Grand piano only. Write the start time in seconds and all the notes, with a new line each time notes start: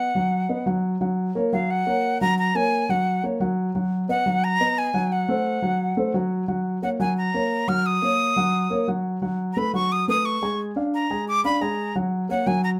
0.15 F#3 F#4 F#5
0.49 B3 B4 D#5
0.66 F#3 F#4 F#5
1.01 F#3 F#4 F#5
1.35 A#3 A#4 C#5
1.53 F#3 F#4 F#5
1.86 A#3 A#4 C#5
2.21 F#3 F#4 F#5
2.55 A#3 A#4 C#5
2.89 F#3 F#4 F#5
3.23 A#3 A#4 C#5
3.40 F#3 F#4 F#5
3.75 F#3 F#4 F#5
4.08 B3 B4 D#5
4.26 F#3 F#4 F#5
4.60 B3 B4 D#5
4.94 F#3 F#4 F#5
5.29 A3 A4 C5
5.62 F#3 F#4 F#5
5.97 A3 A4 C5
6.14 F#3 F#4 F#5
6.48 F#3 F#4 F#5
6.82 A#3 A#4 C#5
7.00 F#3 F#4 F#5
7.34 A#3 A#4 C#5
7.68 F#3 F#4 F#5
8.02 A#3 A#4 C#5
8.36 F#3 F#4 F#5
8.70 A#3 A#4 C#5
8.88 F#3 F#4 F#5
9.22 F#3 F#4 F#5
9.57 A3 A4 B4
9.73 F#3 F#4 F#5
10.08 A3 A4 B4
10.42 G#3 G#4 G#5
10.76 D4 D5 F5
11.11 G#3 G#4 G#5
11.44 D4 D5 F5
11.61 G#3 G#4 G#5
11.95 F#3 F#4 F#5
12.29 A#3 A#4 C#5
12.46 F#3 F#4 F#5